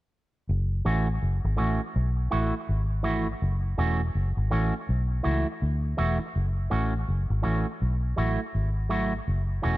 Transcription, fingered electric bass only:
0.49 F#1
0.86 A1
1.23 F#1
1.45 G#1
1.60 A1
1.96 B1
2.33 A1
2.69 G#1
3.42 F#1
3.78 E1
4.15 F#1
4.37 G#1
4.52 A1
4.89 B1
5.26 C#2
5.62 D2
5.99 E1
6.36 F#1
6.72 A1
7.08 F#1
7.30 G#1
7.45 A1
7.82 B1
8.18 A1
8.55 G#1
9.28 F#1
9.65 E1

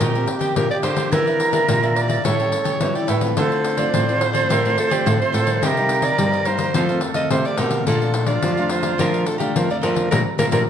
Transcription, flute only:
0.01 G4
1.12 A#4
2.25 A4
3.37 C5
5.63 C5
5.67 A#4
6.74 A4 C5
7.31 G4
7.87 F4
10.12 A#4
10.39 A#4
10.52 A#4

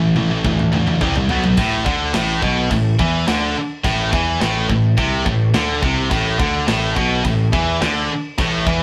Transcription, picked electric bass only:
Already playing: A1
0.17 A1
0.44 D2
0.74 D2
1.01 C2
1.30 B1
1.57 A1
1.86 D2
2.15 A1
2.42 B1
2.71 A1
2.99 E2
3.28 D2
3.84 A1
4.13 E2
4.41 A1
4.69 A1
4.98 C2
5.26 A1
5.54 D2
5.82 C2
6.11 A1
6.39 D2
6.68 A1
6.96 B1
7.25 A1
7.53 E2
7.82 D2
8.39 A1
8.66 E2

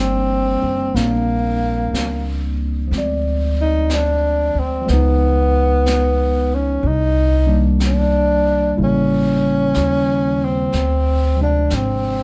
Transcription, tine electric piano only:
Already playing: F3 G3 A#3 D4
0.95 A#3 C4 D4
2.88 F3 G#3
2.95 C4 D5
4.82 F3 G#3
4.89 B3
4.93 D#4
7.47 D#3 G3 A#3 D4
8.77 C#3 G3 A#3 E4
11.36 C3 F3 G#3
11.41 D4

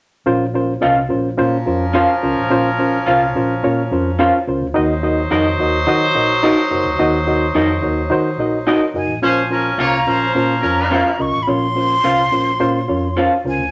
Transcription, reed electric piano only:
0.26 A#2 C#4 F4 A#4 C5
0.54 C#4 F4 A#4 C5
0.81 C#4 F4 A#4 D#5
1.09 C#4 F4 A#4 C5
1.38 C#4 F4 A#4 C5
1.66 C#4 F4 A#4 C5
1.94 C#4 F4 A#4 C5
2.23 C#4 F4 A#4 C5
2.50 A#2 C#4 F4 A#4 C5
2.78 C#4 F4 A#4 C5
3.07 C#4 F4 A#4 C5
3.35 C#4 F4 A#4 C5
3.63 C#4 F4 A#4 C#5
3.92 C#4 F4 A#4 C5
4.19 C#4 F4 A#4 C5
4.47 C#4 F4 A#4 C5
4.74 D#3 D#4 F#4 A#4 D#5
5.03 D#4 F#4 A#4 D#5
5.31 D#4 F#4 A#4 D#5
5.60 D#4 F#4 A#4 D#5
5.87 D#4 F#4 A#4 D#5
6.15 D#4 F#4 A#4 D#5
6.43 D#4 F#4 A#4 D#5
6.70 D#4 F#4 A#4 C5
6.99 D#3 D#4 F#4 A#4 D#5
7.27 D#4 F#4 A#4 D#5
7.55 D#4 F#4 A#4 D#5
7.82 D#4 F#4 A#4 C#5
8.10 D#4 F#4 A#4 C5
8.39 D#4 F#4 A#4 D#5
8.67 D#4 F#4 A#4 D#5
8.95 D#4 F#4 A#4 D#5
9.22 A#2 C#4 F4 A#4 C5
9.50 C#4 F4 A#4 C5
9.78 C#4 F4 A#4 C5
10.06 C#4 F4 A#4 C5
10.35 C#4 F4 A#4 C5
10.62 C#4 F4 A#4 C#5
10.91 C#4 F4 A#4 C5
11.18 C#4 F4 A#4 D#5
11.47 A#2 C#4 F4 A#4 C#5
11.75 C#4 F4 A#4 C5
12.04 C#4 F4 A#4 C5
12.32 C#4 F4 A#4 C5
12.60 C#4 F4 A#4 C5
12.88 C#4 F4 A#4 C#5
13.16 C#4 F4 A#4 C5
13.45 C#4 F4 A#4 C5

